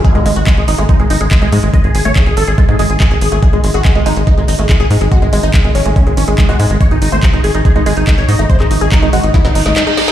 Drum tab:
HH |xxoxxxoxxxoxxxox|xxoxxxoxxxoxxxox|xxo-xxoxxxoxxxox|xxoxxxoxxxoxxxox|
CP |----x-------x---|----x-------x---|----x-------x---|----x-------x---|
SD |----------------|----------------|----------------|----------------|
BD |o---o---o---o---|o---o---o---o---|o---o---o---o---|o---o---o---o---|

HH |xxoxxxoxxxoxxxox|xxoxxxoxxxoxxxo-|
CP |----x-------x---|-x--x-------x---|
SD |----------------|--------oo-oo-oo|
BD |o---o---o---o---|o---o---o-------|